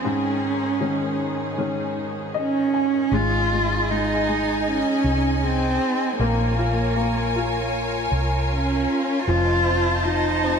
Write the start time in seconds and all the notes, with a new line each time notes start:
Already playing: G#4
0.05 G#2 D#3 C#4
0.81 D#3 G#3 C#4
1.58 D#3 G#3 C#4
2.34 D#5
2.39 C#4
2.74 G#5
3.12 G#1 G#3 D#4 F4 G#4 D#5 G#5
3.52 G#3
3.91 G#3 D#4
4.29 G#3
4.60 D#4
4.68 C#4
5.04 C2
5.43 C4
6.19 A#1 A#3 F4 A#4 C#5 G#5
6.59 F4
6.96 A#3
7.36 F4
8.12 C2
8.53 C#4
9.21 F#4
9.27 F1 F3 F4 C5 D#5 A5
9.66 C4
10.05 F3 D#4
10.43 C4